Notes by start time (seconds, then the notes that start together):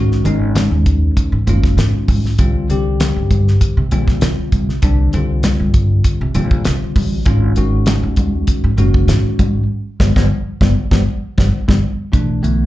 Already playing: G#1 D#3 G#3 C#4 F#4
0.12 snare
0.25 G#1 D#3 G#3 C#4 D#4, closed hi-hat, muted conga, low conga
0.55 snare, closed hi-hat, high conga, low conga
0.71 D#2
0.86 kick, closed hi-hat, muted conga
1.17 muted upright bass stroke, kick, closed hi-hat, muted conga
1.32 G#2
1.47 F#1 D#3 G#3 C#4 F4, closed hi-hat, high conga
1.63 kick, snare
1.77 G#2, snare, closed hi-hat
1.93 muted upright bass stroke
2.08 G#2, kick, open hi-hat, high conga
2.25 snare
2.38 C2 D3 G3 C4 F4, kick, closed hi-hat, muted conga
2.69 C2 D3 G3 C4 G4, closed hi-hat, muted conga
3.00 snare, closed hi-hat, high conga
3.16 G2
3.31 kick, closed hi-hat, muted conga, high conga
3.48 snare
3.61 muted upright bass stroke, kick, closed hi-hat, muted conga
3.77 C3
3.91 A#1 D3 G3 C4 F4, closed hi-hat
4.08 kick, snare
4.21 C3, snare, closed hi-hat
4.38 muted upright bass stroke
4.52 C3, kick, closed hi-hat, high conga
4.69 snare
4.82 C2 D3 G3 C4 D4, kick, closed hi-hat, muted conga
5.13 C2 D3 G3 C4 F4, closed hi-hat, muted conga, low conga
5.43 snare, closed hi-hat, high conga, low conga
5.60 G2
5.74 kick, closed hi-hat, muted conga
6.04 muted upright bass stroke, kick, closed hi-hat, muted conga
6.21 C3
6.34 A#1 D3 G3 C4 F4, closed hi-hat, high conga
6.51 kick
6.65 C3, snare, closed hi-hat
6.82 muted upright bass stroke
6.96 A1, kick, open hi-hat, high conga
7.25 G#1 D#3 G#3 C#4 F4, kick, closed hi-hat, muted conga
7.56 G#1 D#3 G#3 C#4 F#4, closed hi-hat, muted conga
7.86 snare, closed hi-hat, high conga
8.03 D#2
8.16 kick, closed hi-hat, muted conga, high conga
8.47 muted upright bass stroke, kick, closed hi-hat, muted conga
8.64 G#2
8.77 F#1 D#3 G#3 C#4 F#4, closed hi-hat
8.94 kick
9.08 G#2, snare, closed hi-hat
9.24 muted upright bass stroke
9.39 G#2, kick, closed hi-hat, high conga
10.00 G1 F3 G3 B3, kick, snare, high conga
10.16 G1 F3 G3 B3, kick, snare, high conga
10.61 G1 F3 G3 B3, kick, snare, high conga
10.91 G1 F3 G3 B3, kick, snare, high conga
11.38 G1 F3 G3 B3, kick, snare, high conga
11.68 G1 F3 G3 B3, kick, snare, high conga
12.12 C2 B2 E3 A3 D4, kick, closed hi-hat, muted conga
12.43 B1 D3 E3 A3 B3, closed hi-hat